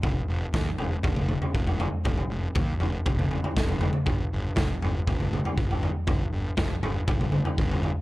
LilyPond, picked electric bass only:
\new Staff \with { instrumentName = "Picked electric bass" } { \clef bass \time 4/4 \key f \mixolydian \tempo 4 = 120 f,,8 f,,8 ees,8 f,,8 f,,4 f,,4 | f,,8 f,,8 ees,8 f,,8 f,,4 f,,4 | g,,8 g,,8 f,,8 g,,8 g,,4 g,,4 | g,,8 g,,8 f,,8 g,,8 g,,4 g,,4 | }